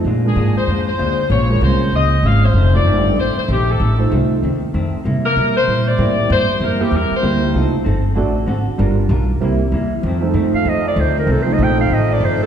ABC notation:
X:1
M:4/4
L:1/8
Q:"Swing" 1/4=192
K:Fmix
V:1 name="Clarinet"
z8 | z8 | z8 | z8 |
z8 | z8 | z8 | z8 |
z3 f e d c B | (3A c e g f e d c A |]
V:2 name="Saxophone section"
z _A2 c2 c3 | _d2 c2 e2 f c- | c d3 c c G A- | A2 z6 |
z B2 c2 d3 | c2 B G B c3- | c z6 z | z8 |
z8 | z8 |]
V:3 name="Grand piano"
z [_A,DFB]3 z4 | z [_A,_DFB]3 z4 | z [A,EFc]3 z4 | z [A,EFc]3 z4 |
z6 [=EGBc]2- | [=EGBc] z2 [B,EGc] z2 [B,EGc]2 | [A,EFc] z3 [A,D^Fd] z3 | [G,DFB] z3 [G,C=EB] z3 |
z [F,A,CEA]3 z4 | z [F,A,CEA]3 z4 |]
V:4 name="Saxophone section"
z8 | z8 | z8 | z8 |
z8 | z8 | z8 | z8 |
[A,CEF]8- | [A,CEF]8 |]
V:5 name="Hollow-body jazz guitar"
[B,,_A,DF] z [B,,A,DF] z [B,,A,DF] z [B,,A,DF] z | [B,,_A,_DF] z [B,,A,DF] z [B,,A,DF] z [B,,A,DF] z | [F,,E,A,C] z [F,,E,A,C] z [F,,E,A,C] z [F,,E,A,C] z | [F,,E,A,C] z [F,,E,A,C] z [F,,E,A,C] z [F,,E,A,C] z |
[C,G,B,=E] z [C,G,B,E] z [C,G,B,E] z [C,G,B,E] z | [C,G,B,=E] z [C,G,B,E] z [C,G,B,E] z [C,G,B,E] z | [F,CEA] z [F,CEA] z [D,C^FA] z [D,CFA] z | [G,DFB] z [G,DFB] z [C,G,B,=E] z [C,G,B,E] z |
[F,,E,A,C] z [F,,E,A,C] z [F,,E,A,C] z [F,,E,A,C] z | [F,,E,A,C] z [F,,E,A,C] z [F,,E,A,C] z [F,,E,A,C] z |]
V:6 name="Upright bass" clef=bass
B,,2 _A,, z F,,2 D,,2 | B,,,2 C,,2 _D,,2 _A,,,2 | F,,,2 G,,,2 A,,, z B,,,2 | A,,,2 C,,2 E,,2 F,, z |
C,2 =B,,2 _B,,2 A,,2 | G,,2 F,, z =E,, z D,,2 | C,, z G,,,2 A,,,2 _A,,, z | G,,,2 =B,,,2 C,,2 =E,,2 |
F,,2 G,, z F,,2 D,,2 | C,,2 B,,,2 A,,,2 G,,,2 |]